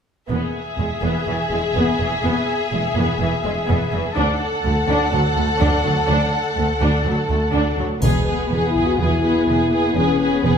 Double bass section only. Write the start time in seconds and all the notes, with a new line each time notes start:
0.29 E1
0.78 E1
1.02 E1
1.27 E1
1.51 E1
1.75 E1
2.00 E1
2.24 E1
2.72 E1
2.96 E1
3.20 E1
3.44 E1
3.68 E1
3.93 E1
4.17 D2
4.65 D2
4.88 D2
5.12 D2
5.36 D2
5.60 D2
5.84 D2
6.07 D2
6.56 D2
6.80 D2
7.04 D2
7.28 D2
7.52 D2
7.77 D2
8.01 E1
8.51 E1
8.99 E1
9.47 E1
9.95 E1
10.43 E1